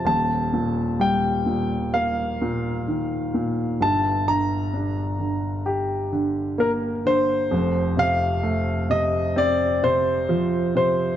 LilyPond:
<<
  \new Staff \with { instrumentName = "Grand piano" } { \time 4/4 \key ees \lydian \tempo 4 = 65 a''4 g''4 f''2 | a''8 bes''2 r8 bes'8 c''8~ | c''8 f''4 ees''8 d''8 c''4 c''8 | }
  \new Staff \with { instrumentName = "Grand piano" } { \clef bass \time 4/4 \key ees \lydian <ees,, ees,>8 bes,8 g8 bes,8 bes8 bes,8 ees8 bes,8 | <g,, g,>8 d8 d'8 d8 g'8 d8 bes8 d8 | <f,, f,>8 c8 a8 c8 c'8 c8 f8 c8 | }
>>